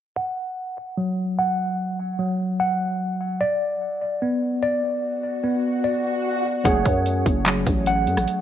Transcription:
0.16 F#5
0.97 F#3
1.39 F#5
2.19 F#3
2.60 F#5
3.41 D5, swell
4.22 B3
4.63 D5
5.44 B3
5.84 D5
6.64 F#1 F#3 A3 C#4 G#4 C#5 F#5, kick, closed hi-hat
6.85 F#2, kick, closed hi-hat
7.06 closed hi-hat
7.26 F#1, kick, closed hi-hat
7.46 F#3, clap, closed hi-hat
7.67 A1, kick, closed hi-hat
7.86 F#5, closed hi-hat
8.07 F#2, closed hi-hat
8.17 A1, cross-stick, closed hi-hat
8.28 closed hi-hat

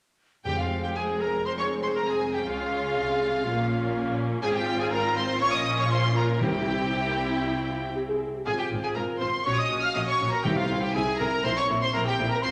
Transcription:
0.45 F1 F2 G#3 C4 G4 G#4 G5
0.58 F4 F5
0.83 G4 G5
0.95 G#3 C4 G#4 G#5
1.20 A#4 A#5
1.45 G#3 C4 G#4 C5 C6
1.58 C#5 C#6
1.83 C5 C6
1.95 A#4 A#5
2.09 G#4 G#5
2.33 G4 G5
2.45 C#2 C#3 G#3 C#4 F4 G#4 F5
2.95 C2 C3
3.44 A#1 A#2 A#3 C#4 F4
4.41 G#1 G#2 C4 F4 G#4 G#5
4.53 G4 G5
4.78 G#4 G#5
4.91 A#4 A#5
5.14 C5 C6
5.40 A#1 A#2 C#4 F4 C#5 C#6
5.53 D#5 D#6
5.78 C#5 C#6
5.90 C5 C6
6.15 A#4 A#5
6.40 C2 C3 C4 E4 G4 G5
6.92 C4
7.06 A#3
7.31 C4
7.44 E4
7.68 F4
7.94 G4
8.08 G#4
8.33 G4
8.45 G#1 G#2 C4 F4 G#4 G#5
8.58 G4 G5
8.71 G#1 G#2 C4 F4
8.81 G#4 G#5
8.94 G#1 G#2 C4 F4 A#4 A#5
9.19 G#1 G#2 C4 F4 C5 C6
9.44 A#1 A#2 C#4 F#4 C#5 C#6
9.56 D#5 D#6
9.70 A#1 A#2 C#4 F#4
9.82 F5 F6
9.94 A#1 A#2 C#4 F#4 D#5 D#6
10.07 C#5 C#6
10.20 A#1 A#2 C#4 F#4
10.31 A#4 A#5
10.43 C2 C3 C4 E4 G4 G5
10.55 F4 F5
10.69 C2 C3 C4 E4
10.81 G4 G5
10.93 C2 C3 C4 E4 G#4 G#5
11.18 C2 C3 C4 E4 A#4 A#5
11.43 A#1 A#2 C4 E4 C5 C6
11.56 C#5 C#6
11.69 A#1 A#2 C4 E4
11.82 C5 C6
11.93 A#1 A#2 C4 E4 A#4 A#5
12.05 G4 G5
12.18 A#1 A#2 C4 E4
12.29 A#4 A#5
12.41 G#1 G#2 C4 F4 C5 C6

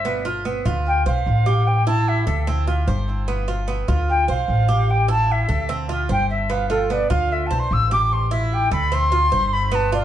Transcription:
Already playing: G1 E5
0.05 B3
0.25 F4
0.45 B3
0.65 D2 F4
0.87 G5
1.06 B1 C5 F5
1.26 A1
1.46 G4
1.67 G5
1.87 E4 A5
2.08 E5
2.26 D2 A4
2.47 C4
2.67 F4
2.87 G1 C5
3.28 B3
3.48 F4
3.68 B3
3.88 D2 F4
4.10 G5
4.28 B1 C5 F5
4.48 A1
4.69 G4
4.90 G5
5.08 E4 A5
5.32 E5
5.49 D2 A4
5.69 C4
5.89 F4
6.09 G1 C5 G5
6.30 E5
6.50 B3 F5
6.70 F4 A4
6.90 B3 D5
7.10 D2 F4 F5
7.32 E5
7.46 A5
7.51 B1 C5
7.59 C6
7.71 A1 E6
7.91 G4 D6
8.13 C6
8.31 E4 E5
8.54 G5
8.71 D2 A4 B5
8.92 C4 C6
9.12 F4
9.32 G1 C5
9.53 B5
9.72 B3 A5
9.92 F4 D5

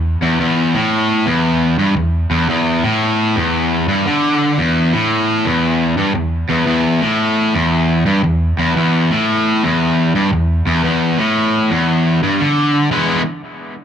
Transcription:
Already playing: E2
0.22 E2
0.40 E2
0.74 A2
1.26 E2
1.79 G2
1.97 E2
2.31 E2
2.49 E2
2.84 A2
3.36 E2
3.88 G2
4.06 D3
4.58 E2
4.93 A2
5.45 E2
5.97 G2
6.15 E2
6.50 E2
6.67 E2
7.02 A2
7.54 E2
8.06 G2
8.24 E2
8.59 E2
8.76 E2
9.11 A2
9.63 E2
10.15 G2
10.33 E2
10.67 E2
10.84 E2
11.18 A2
11.70 E2
12.23 G2
12.40 D3
12.91 E3 G#3 B3 E4

